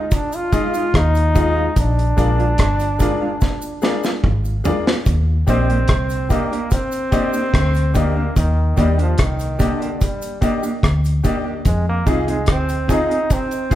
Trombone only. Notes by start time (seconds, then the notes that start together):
Already playing: D#4
0.14 D4
0.36 F4
0.96 D#4
1.79 D4
5.49 C4
6.31 A#3
6.72 C4
7.97 A#3
8.37 D#3
8.79 G3
9.01 F3
9.22 D#3
9.62 D3
10.03 G3
11.67 G#3
11.89 A#3
12.30 G#3
12.52 C4
12.91 D#4
13.33 C4